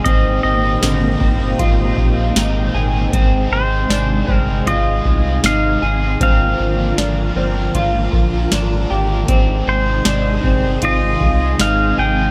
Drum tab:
HH |x-x-x-x-|x-x-x-x-|x-x-x-x-|x-x-x-x-|
TB |--x---x-|--x---x-|--x---x-|--x---x-|
SD |--o---o-|--o---o-|--o---o-|--o---o-|
BD |o--ooo--|o--ooo--|o---oo--|o--ooo--|